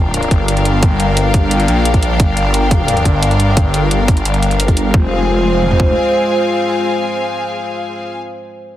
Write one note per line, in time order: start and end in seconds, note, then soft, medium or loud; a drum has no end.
0.00 0.30 G1 medium
0.00 4.90 G3 medium
0.00 0.22 C4 medium
0.00 4.94 D4 medium
0.00 4.90 F4 medium
0.00 4.90 A#4 medium
0.00 4.94 A#4 medium
0.00 4.94 F5 medium
0.00 4.94 G5 medium
0.14 closed hi-hat medium
0.23 closed hi-hat soft
0.31 1.67 G1 medium
0.31 kick medium
0.31 closed hi-hat medium
0.48 closed hi-hat medium
0.57 closed hi-hat soft
0.65 closed hi-hat medium
0.83 kick loud
0.83 closed hi-hat medium
1.00 closed hi-hat medium
1.17 closed hi-hat medium
1.34 kick loud
1.34 closed hi-hat medium
1.51 closed hi-hat medium
1.60 closed hi-hat soft
1.68 2.18 A#1 loud
1.68 closed hi-hat medium
1.85 closed hi-hat medium
1.94 kick medium
1.94 closed hi-hat soft
2.03 closed hi-hat medium
2.20 3.04 G1 loud
2.20 kick loud
2.20 closed hi-hat medium
2.37 closed hi-hat medium
2.54 closed hi-hat medium
2.71 kick loud
2.71 closed hi-hat medium
2.88 closed hi-hat medium
2.97 closed hi-hat soft
3.05 3.90 G1 loud
3.05 kick medium
3.05 closed hi-hat medium
3.23 closed hi-hat medium
3.31 closed hi-hat soft
3.40 closed hi-hat medium
3.57 kick loud
3.57 closed hi-hat medium
3.74 closed hi-hat medium
3.91 4.07 G1 medium
3.91 closed hi-hat medium
4.08 4.93 G1 medium
4.08 kick loud
4.08 closed hi-hat medium
4.17 closed hi-hat soft
4.25 closed hi-hat medium
4.34 closed hi-hat soft
4.43 closed hi-hat medium
4.51 closed hi-hat soft
4.60 closed hi-hat medium
4.68 kick medium
4.68 closed hi-hat soft
4.77 closed hi-hat medium
4.94 5.93 F1 loud
4.94 8.03 G#3 medium
4.94 8.03 C4 medium
4.94 8.03 F4 medium
4.94 8.03 C5 medium
4.94 kick loud
4.99 8.09 G#4 medium
5.04 8.14 F5 medium
5.09 8.19 G#5 medium
5.63 mid tom medium
5.71 floor tom medium
5.80 kick medium